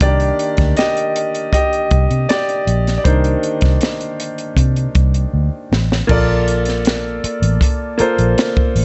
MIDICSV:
0, 0, Header, 1, 6, 480
1, 0, Start_track
1, 0, Tempo, 760746
1, 8, Time_signature, 4, 2, 24, 8
1, 5583, End_track
2, 0, Start_track
2, 0, Title_t, "Vibraphone"
2, 0, Program_c, 0, 11
2, 4325, Note_on_c, 0, 74, 68
2, 5583, Note_off_c, 0, 74, 0
2, 5583, End_track
3, 0, Start_track
3, 0, Title_t, "Grand piano"
3, 0, Program_c, 1, 0
3, 0, Control_c, 1, 64, 127
3, 7, Note_on_c, 1, 51, 52
3, 9, Note_on_c, 1, 58, 46
3, 14, Note_on_c, 1, 74, 101
3, 15, Note_on_c, 1, 62, 57
3, 16, Note_on_c, 1, 67, 76
3, 17, Control_c, 1, 64, 0
3, 115, Control_c, 1, 64, 127
3, 326, Note_off_c, 1, 51, 0
3, 328, Note_off_c, 1, 58, 0
3, 330, Note_off_c, 1, 62, 0
3, 466, Note_off_c, 1, 67, 0
3, 487, Note_on_c, 1, 75, 91
3, 496, Note_on_c, 1, 67, 72
3, 505, Note_off_c, 1, 74, 0
3, 942, Note_off_c, 1, 75, 0
3, 946, Note_off_c, 1, 67, 0
3, 967, Note_on_c, 1, 75, 97
3, 975, Note_on_c, 1, 67, 73
3, 1422, Note_off_c, 1, 75, 0
3, 1426, Note_off_c, 1, 67, 0
3, 1445, Note_on_c, 1, 74, 92
3, 1452, Note_on_c, 1, 67, 72
3, 1860, Note_off_c, 1, 67, 0
3, 1870, Note_off_c, 1, 74, 0
3, 1880, Note_on_c, 1, 74, 60
3, 1920, Note_on_c, 1, 72, 74
3, 1922, Note_on_c, 1, 51, 50
3, 1926, Note_off_c, 1, 74, 0
3, 1928, Note_on_c, 1, 58, 44
3, 1928, Note_on_c, 1, 62, 56
3, 1931, Note_on_c, 1, 63, 60
3, 3577, Note_off_c, 1, 72, 0
3, 3583, Note_off_c, 1, 63, 0
3, 3818, Note_off_c, 1, 51, 0
3, 3821, Note_off_c, 1, 58, 0
3, 3821, Note_off_c, 1, 62, 0
3, 3831, Note_on_c, 1, 58, 82
3, 3838, Note_on_c, 1, 65, 73
3, 3848, Note_on_c, 1, 69, 74
3, 3854, Note_on_c, 1, 74, 93
3, 3856, Control_c, 1, 64, 0
3, 3975, Control_c, 1, 64, 127
3, 4702, Note_off_c, 1, 58, 0
3, 4705, Note_off_c, 1, 65, 0
3, 4710, Note_off_c, 1, 69, 0
3, 4713, Note_off_c, 1, 74, 0
3, 5033, Note_on_c, 1, 58, 82
3, 5040, Note_on_c, 1, 65, 72
3, 5049, Note_on_c, 1, 69, 68
3, 5053, Note_on_c, 1, 72, 85
3, 5583, Note_off_c, 1, 58, 0
3, 5583, Note_off_c, 1, 65, 0
3, 5583, Note_off_c, 1, 69, 0
3, 5583, Note_off_c, 1, 72, 0
3, 5583, End_track
4, 0, Start_track
4, 0, Title_t, "Fingered electric bass"
4, 0, Program_c, 2, 33
4, 5, Note_on_c, 2, 36, 93
4, 193, Note_off_c, 2, 36, 0
4, 367, Note_on_c, 2, 38, 77
4, 460, Note_off_c, 2, 38, 0
4, 1206, Note_on_c, 2, 36, 79
4, 1300, Note_off_c, 2, 36, 0
4, 1329, Note_on_c, 2, 48, 82
4, 1421, Note_off_c, 2, 48, 0
4, 1686, Note_on_c, 2, 34, 82
4, 1872, Note_off_c, 2, 34, 0
4, 1926, Note_on_c, 2, 36, 88
4, 2112, Note_off_c, 2, 36, 0
4, 2286, Note_on_c, 2, 36, 74
4, 2379, Note_off_c, 2, 36, 0
4, 2881, Note_on_c, 2, 48, 98
4, 3069, Note_off_c, 2, 48, 0
4, 3125, Note_on_c, 2, 36, 90
4, 3312, Note_off_c, 2, 36, 0
4, 3366, Note_on_c, 2, 38, 85
4, 3459, Note_off_c, 2, 38, 0
4, 3608, Note_on_c, 2, 33, 72
4, 3793, Note_off_c, 2, 33, 0
4, 3845, Note_on_c, 2, 34, 96
4, 4540, Note_off_c, 2, 34, 0
4, 4683, Note_on_c, 2, 33, 85
4, 4777, Note_off_c, 2, 33, 0
4, 5166, Note_on_c, 2, 34, 76
4, 5259, Note_off_c, 2, 34, 0
4, 5524, Note_on_c, 2, 33, 81
4, 5583, Note_off_c, 2, 33, 0
4, 5583, End_track
5, 0, Start_track
5, 0, Title_t, "Muted fingered electric bass strokes"
5, 4567, Note_on_c, 9, 29, 43
5, 4630, Note_off_c, 9, 29, 0
5, 5047, Note_on_c, 9, 29, 43
5, 5110, Note_off_c, 9, 29, 0
5, 5583, End_track
6, 0, Start_track
6, 0, Title_t, "Drums"
6, 3, Note_on_c, 9, 42, 88
6, 6, Note_on_c, 9, 36, 116
6, 66, Note_off_c, 9, 42, 0
6, 69, Note_off_c, 9, 36, 0
6, 125, Note_on_c, 9, 42, 48
6, 188, Note_off_c, 9, 42, 0
6, 248, Note_on_c, 9, 42, 58
6, 311, Note_off_c, 9, 42, 0
6, 360, Note_on_c, 9, 42, 51
6, 367, Note_on_c, 9, 36, 84
6, 377, Note_on_c, 9, 38, 28
6, 423, Note_off_c, 9, 42, 0
6, 430, Note_off_c, 9, 36, 0
6, 441, Note_off_c, 9, 38, 0
6, 483, Note_on_c, 9, 42, 70
6, 498, Note_on_c, 9, 38, 87
6, 546, Note_off_c, 9, 42, 0
6, 561, Note_off_c, 9, 38, 0
6, 610, Note_on_c, 9, 42, 52
6, 673, Note_off_c, 9, 42, 0
6, 730, Note_on_c, 9, 42, 75
6, 793, Note_off_c, 9, 42, 0
6, 849, Note_on_c, 9, 42, 52
6, 912, Note_off_c, 9, 42, 0
6, 963, Note_on_c, 9, 36, 73
6, 971, Note_on_c, 9, 42, 87
6, 1026, Note_off_c, 9, 36, 0
6, 1034, Note_off_c, 9, 42, 0
6, 1090, Note_on_c, 9, 42, 44
6, 1153, Note_off_c, 9, 42, 0
6, 1203, Note_on_c, 9, 42, 59
6, 1207, Note_on_c, 9, 36, 90
6, 1266, Note_off_c, 9, 42, 0
6, 1270, Note_off_c, 9, 36, 0
6, 1328, Note_on_c, 9, 42, 49
6, 1392, Note_off_c, 9, 42, 0
6, 1447, Note_on_c, 9, 42, 89
6, 1455, Note_on_c, 9, 38, 106
6, 1511, Note_off_c, 9, 42, 0
6, 1518, Note_off_c, 9, 38, 0
6, 1569, Note_on_c, 9, 42, 48
6, 1632, Note_off_c, 9, 42, 0
6, 1687, Note_on_c, 9, 42, 72
6, 1751, Note_off_c, 9, 42, 0
6, 1813, Note_on_c, 9, 42, 41
6, 1815, Note_on_c, 9, 38, 29
6, 1876, Note_off_c, 9, 42, 0
6, 1878, Note_off_c, 9, 38, 0
6, 1925, Note_on_c, 9, 42, 83
6, 1926, Note_on_c, 9, 36, 109
6, 1988, Note_off_c, 9, 42, 0
6, 1989, Note_off_c, 9, 36, 0
6, 2045, Note_on_c, 9, 42, 48
6, 2108, Note_off_c, 9, 42, 0
6, 2165, Note_on_c, 9, 42, 58
6, 2228, Note_off_c, 9, 42, 0
6, 2278, Note_on_c, 9, 42, 50
6, 2285, Note_on_c, 9, 36, 84
6, 2295, Note_on_c, 9, 38, 30
6, 2341, Note_off_c, 9, 42, 0
6, 2348, Note_off_c, 9, 36, 0
6, 2358, Note_off_c, 9, 38, 0
6, 2402, Note_on_c, 9, 42, 71
6, 2417, Note_on_c, 9, 38, 84
6, 2465, Note_off_c, 9, 42, 0
6, 2480, Note_off_c, 9, 38, 0
6, 2527, Note_on_c, 9, 42, 48
6, 2590, Note_off_c, 9, 42, 0
6, 2649, Note_on_c, 9, 42, 76
6, 2712, Note_off_c, 9, 42, 0
6, 2765, Note_on_c, 9, 42, 50
6, 2828, Note_off_c, 9, 42, 0
6, 2881, Note_on_c, 9, 36, 76
6, 2887, Note_on_c, 9, 42, 84
6, 2944, Note_off_c, 9, 36, 0
6, 2950, Note_off_c, 9, 42, 0
6, 3005, Note_on_c, 9, 42, 44
6, 3068, Note_off_c, 9, 42, 0
6, 3122, Note_on_c, 9, 42, 59
6, 3125, Note_on_c, 9, 36, 91
6, 3185, Note_off_c, 9, 42, 0
6, 3188, Note_off_c, 9, 36, 0
6, 3245, Note_on_c, 9, 42, 46
6, 3308, Note_off_c, 9, 42, 0
6, 3613, Note_on_c, 9, 38, 85
6, 3676, Note_off_c, 9, 38, 0
6, 3736, Note_on_c, 9, 38, 74
6, 3799, Note_off_c, 9, 38, 0
6, 3845, Note_on_c, 9, 36, 116
6, 3847, Note_on_c, 9, 49, 91
6, 3908, Note_off_c, 9, 36, 0
6, 3910, Note_off_c, 9, 49, 0
6, 4086, Note_on_c, 9, 42, 58
6, 4149, Note_off_c, 9, 42, 0
6, 4198, Note_on_c, 9, 42, 50
6, 4216, Note_on_c, 9, 38, 30
6, 4261, Note_off_c, 9, 42, 0
6, 4279, Note_off_c, 9, 38, 0
6, 4322, Note_on_c, 9, 42, 69
6, 4337, Note_on_c, 9, 38, 88
6, 4385, Note_off_c, 9, 42, 0
6, 4400, Note_off_c, 9, 38, 0
6, 4568, Note_on_c, 9, 42, 79
6, 4631, Note_off_c, 9, 42, 0
6, 4686, Note_on_c, 9, 42, 52
6, 4749, Note_off_c, 9, 42, 0
6, 4801, Note_on_c, 9, 36, 77
6, 4808, Note_on_c, 9, 42, 84
6, 4864, Note_off_c, 9, 36, 0
6, 4871, Note_off_c, 9, 42, 0
6, 5040, Note_on_c, 9, 42, 61
6, 5103, Note_off_c, 9, 42, 0
6, 5164, Note_on_c, 9, 42, 50
6, 5227, Note_off_c, 9, 42, 0
6, 5286, Note_on_c, 9, 42, 91
6, 5294, Note_on_c, 9, 38, 112
6, 5350, Note_off_c, 9, 42, 0
6, 5357, Note_off_c, 9, 38, 0
6, 5406, Note_on_c, 9, 36, 88
6, 5469, Note_off_c, 9, 36, 0
6, 5525, Note_on_c, 9, 46, 67
6, 5583, Note_off_c, 9, 46, 0
6, 5583, End_track
0, 0, End_of_file